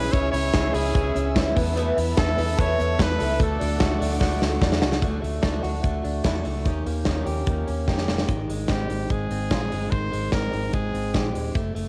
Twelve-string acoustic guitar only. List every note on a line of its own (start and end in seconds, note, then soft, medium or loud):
0.00 0.13 G#3 soft
0.00 0.14 C#4 soft
0.00 0.14 E4 medium
0.14 0.34 C#3 medium
0.14 0.34 E3 medium
0.14 0.35 G#3 medium
0.14 0.33 C#4 medium
0.14 0.32 E4 medium
0.33 0.53 G#3 soft
0.33 0.54 C#4 soft
0.33 0.54 E4 medium
0.53 0.74 E3 medium
0.53 0.75 G#3 medium
0.53 0.75 C#4 medium
0.53 0.73 E4 medium
0.74 0.94 G#3 soft
0.74 0.95 C#4 medium
0.74 0.95 E4 medium
0.94 1.15 C#3 medium
0.94 1.16 E3 medium
0.94 1.16 G#3 medium
0.94 1.15 C#4 medium
0.94 1.13 E4 medium
1.15 1.35 G#3 soft
1.15 1.35 C#4 soft
1.15 1.36 E4 medium
1.34 1.56 E3 medium
1.34 1.56 G#3 medium
1.34 1.56 C#4 medium
1.34 1.54 E4 medium
1.55 1.75 E3 soft
1.55 1.75 A3 medium
1.55 1.76 B3 medium
1.55 1.76 E4 medium
1.75 1.97 E2 medium
1.75 1.97 B2 medium
1.75 1.97 E3 medium
1.75 1.97 A3 medium
1.75 1.97 B3 medium
1.75 1.95 E4 medium
1.96 2.16 E3 medium
1.96 2.16 A3 medium
1.96 2.18 B3 medium
1.96 2.17 E4 medium
2.17 2.38 E3 medium
2.17 2.38 A3 medium
2.17 2.37 B3 medium
2.17 2.37 E4 medium
2.38 2.58 E3 soft
2.38 2.58 A3 soft
2.38 2.58 B3 soft
2.38 2.58 E4 medium
2.58 2.78 E2 medium
2.58 2.79 B2 medium
2.58 2.79 E3 medium
2.58 2.79 A3 medium
2.58 2.79 B3 medium
2.58 2.77 E4 medium
2.79 2.97 E3 soft
2.79 2.98 A3 soft
2.79 2.98 B3 soft
2.79 2.99 E4 soft
2.99 3.19 E3 medium
2.99 3.19 A3 medium
2.99 3.19 B3 medium
2.99 3.17 E4 medium
3.19 3.39 E3 soft
3.19 3.38 A3 soft
3.19 3.40 B3 medium
3.19 3.39 E4 medium
3.39 3.60 D3 medium
3.39 3.60 A3 medium
3.39 3.59 D4 medium
3.39 3.58 F#4 medium
3.59 3.78 A3 soft
3.59 3.79 D4 soft
3.59 3.79 F#4 medium
3.78 4.00 D3 medium
3.78 4.00 A3 medium
3.78 4.00 D4 medium
3.78 3.98 F#4 medium
4.00 4.19 A3 soft
4.00 4.20 D4 medium
4.00 4.20 F#4 medium
4.19 4.41 D3 medium
4.19 4.41 A3 medium
4.19 4.41 D4 medium
4.19 4.40 F#4 loud
4.41 4.61 A3 soft
4.41 4.62 D4 medium
4.41 4.62 F#4 medium
4.61 4.82 D3 medium
4.61 4.82 A3 medium
4.61 4.82 D4 medium
4.61 4.81 F#4 medium
4.82 5.00 A3 soft
4.82 5.01 D4 medium
4.82 5.02 F#4 medium
5.01 5.22 D3 medium
5.01 5.21 A3 medium
5.01 5.20 D4 medium
5.01 5.19 F#4 medium
5.20 5.41 A3 soft
5.20 5.41 D4 soft
5.20 5.42 F#4 medium
5.41 5.63 D3 medium
5.41 5.63 A3 medium
5.41 5.62 D4 medium
5.41 5.61 F#4 medium
5.62 5.82 A3 medium
5.62 5.83 D4 medium
5.62 5.83 F#4 medium
5.81 6.03 D3 medium
5.81 6.03 A3 medium
5.81 6.02 D4 medium
5.81 6.01 F#4 medium
6.02 6.23 A3 soft
6.02 6.23 D4 soft
6.02 6.24 F#4 medium
6.23 6.45 D3 medium
6.23 6.44 A3 medium
6.23 6.43 D4 medium
6.23 6.42 F#4 medium
6.43 6.65 A3 soft
6.43 6.65 D4 soft
6.43 6.65 F#4 medium
6.64 6.85 D#3 medium
6.64 6.86 A#3 medium
6.64 6.86 C#4 medium
6.64 6.85 G4 medium
6.86 7.06 A#3 soft
6.86 7.07 C#4 medium
6.86 7.06 G4 medium
7.06 7.27 D#3 medium
7.06 7.27 A#3 medium
7.06 7.28 C#4 medium
7.06 7.27 G4 medium
7.28 7.49 A#3 soft
7.28 7.49 C#4 medium
7.28 7.48 G4 medium
7.48 7.68 D#3 medium
7.48 7.69 A#3 medium
7.48 7.69 C#4 medium
7.48 7.68 G4 medium
7.70 7.88 A#3 soft
7.70 7.89 C#4 soft
7.70 7.89 G4 medium
7.88 8.09 D#3 medium
7.88 8.09 A#3 medium
7.88 8.08 C#4 medium
7.88 8.07 G4 medium
8.09 8.30 A#3 soft
8.09 8.29 C#4 soft
8.09 8.29 G4 medium